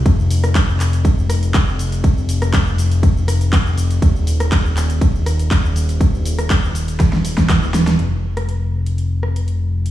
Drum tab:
RD |x---x---x---x---|x---x---x---x---|x---x---x---x---|x---x---x---x---|
HH |x-oxx-oxx-oxx-ox|x-oxx-oxx-oxx-ox|x-oxx-oxx-oxx-ox|x-oxx-oxx-oxx-ox|
SH |xxxxxxxxxxxxxxxx|xxxxxxxxxxxxxxxx|xxxxxxxxxxxxxxxx|xxxxxxxxxxxxxxxx|
CP |----x-x-----x---|----x-------x---|----x-x-----x---|----x-------x---|
SD |---r------r-----|---r------r-----|---r------r-----|---r----oo-oo-oo|
BD |o---o---o---o---|o---o---o---o---|o---o---o---o---|o---o---o--oo---|

RD |----------------|
HH |x--xx--xx--xx--x|
SH |----------------|
CP |----------------|
SD |---r------r-----|
BD |----------------|